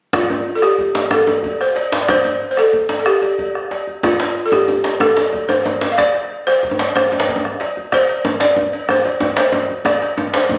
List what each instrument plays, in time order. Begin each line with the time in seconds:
0.13 balafon F4, bombo rim, bombo low, cowbell, djembe tone, djembe bass
0.30 cowbell, djembe slap, djembe tone
0.46 djembe slap
0.55 balafon A4
0.62 balafon G4, bombo rim, cowbell, djembe tone
0.78 bombo low, djembe slap, djembe bass
0.95 cowbell, djembe slap
1.11 balafon A4, bombo rim, djembe tone
1.27 cowbell, djembe slap, djembe tone
1.43 bombo low, cowbell, djembe bass
1.60 balafon C5, bombo rim, djembe slap
1.76 cowbell, djembe slap
1.92 djembe slap, djembe tone
2.02 balafon D5
2.08 balafon C5, bombo rim, bombo low, cowbell, djembe tone, djembe bass
2.24 cowbell, djembe slap, djembe tone
2.51 balafon C5
2.57 balafon A4, bombo rim, cowbell, djembe tone
2.73 bombo low, djembe slap, djembe bass
2.89 cowbell, djembe slap
2.99 balafon A4
3.06 balafon G4, bombo rim
3.22 cowbell, djembe slap, djembe tone
3.39 bombo low, cowbell, djembe bass
3.55 bombo rim, djembe slap
3.71 cowbell, djembe slap
3.87 djembe tone
4.03 balafon F4, bombo rim, bombo low, cowbell, djembe tone, djembe bass
4.20 cowbell, djembe slap
4.36 djembe slap
4.46 balafon A4
4.52 balafon G4, bombo rim, cowbell, djembe tone
4.68 bombo low, djembe slap, djembe tone, djembe bass
4.84 cowbell, djembe slap
5.00 balafon A4, bombo rim, djembe tone
5.17 cowbell, djembe slap, djembe tone
5.33 bombo low, cowbell, djembe bass
5.49 balafon C5, bombo rim, djembe tone
5.65 cowbell, djembe slap, djembe tone
5.81 djembe slap, djembe tone
5.92 balafon F5
5.98 balafon D5, bombo rim, bombo low, cowbell, djembe slap, djembe bass
6.14 cowbell, djembe slap
6.47 balafon C5, bombo rim, cowbell, djembe tone
6.63 bombo low, djembe slap, djembe bass
6.71 djembe tone
6.79 bombo rim, cowbell, djembe slap
6.96 balafon C5, bombo rim, djembe tone
7.12 cowbell, djembe slap, djembe tone
7.20 djembe slap
7.28 bombo low, cowbell, djembe slap, djembe bass
7.36 djembe tone
7.45 bombo rim
7.60 cowbell, djembe slap
7.77 djembe tone
7.92 balafon C5, bombo rim, bombo low, cowbell, djembe bass
8.09 cowbell, djembe slap
8.25 djembe tone
8.40 balafon D5, bombo rim, cowbell, djembe slap, djembe tone
8.56 bombo low, djembe slap, djembe tone, djembe bass
8.73 cowbell
8.89 balafon C5, bombo rim, djembe tone
9.05 cowbell, djembe slap, djembe tone
9.20 bombo low, cowbell, djembe tone, djembe bass
9.37 balafon C5, bombo rim, djembe slap
9.52 cowbell, djembe slap, djembe tone
9.69 djembe tone
9.85 balafon D5, bombo rim, bombo low, cowbell, djembe tone, djembe bass
10.01 cowbell, djembe slap
10.17 djembe slap, djembe tone
10.34 balafon C5, bombo rim, cowbell, djembe slap, djembe tone
10.49 bombo low, djembe slap, djembe tone, djembe bass